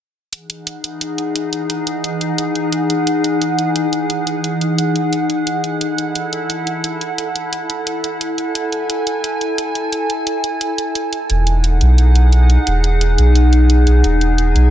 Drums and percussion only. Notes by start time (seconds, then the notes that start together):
0.33 closed hi-hat
0.50 closed hi-hat
0.67 closed hi-hat
0.84 closed hi-hat
1.01 closed hi-hat
1.18 closed hi-hat
1.36 closed hi-hat
1.53 closed hi-hat
1.70 closed hi-hat
1.87 closed hi-hat
2.04 closed hi-hat
2.21 closed hi-hat
2.38 closed hi-hat
2.55 closed hi-hat
2.73 closed hi-hat
2.90 closed hi-hat
3.07 closed hi-hat
3.24 closed hi-hat
3.42 closed hi-hat
3.59 closed hi-hat
3.76 closed hi-hat
3.93 closed hi-hat
4.10 closed hi-hat
4.27 closed hi-hat
4.44 closed hi-hat
4.61 closed hi-hat
4.78 closed hi-hat
4.96 closed hi-hat
5.13 closed hi-hat
5.30 closed hi-hat
5.47 closed hi-hat
5.64 closed hi-hat
5.81 closed hi-hat
5.98 closed hi-hat
6.15 closed hi-hat
6.33 closed hi-hat
6.50 closed hi-hat
6.67 closed hi-hat
6.84 closed hi-hat
7.01 closed hi-hat
7.18 closed hi-hat
7.36 closed hi-hat
7.53 closed hi-hat
7.70 closed hi-hat
7.87 closed hi-hat
8.04 closed hi-hat
8.21 closed hi-hat
8.38 closed hi-hat
8.55 closed hi-hat
8.72 closed hi-hat
8.90 closed hi-hat
9.07 closed hi-hat
9.24 closed hi-hat
9.41 closed hi-hat
9.58 closed hi-hat
9.75 closed hi-hat
9.92 closed hi-hat
10.10 closed hi-hat
10.27 closed hi-hat
10.44 closed hi-hat
10.61 closed hi-hat
10.78 closed hi-hat
10.95 closed hi-hat
11.13 closed hi-hat
11.30 closed hi-hat
11.47 closed hi-hat
11.64 closed hi-hat
11.81 closed hi-hat
11.98 closed hi-hat
12.15 closed hi-hat
12.32 closed hi-hat
12.50 closed hi-hat
12.67 closed hi-hat
12.84 closed hi-hat
13.01 closed hi-hat
13.18 closed hi-hat
13.35 closed hi-hat
13.53 closed hi-hat
13.70 closed hi-hat
13.87 closed hi-hat
14.04 closed hi-hat
14.21 closed hi-hat
14.38 closed hi-hat
14.56 closed hi-hat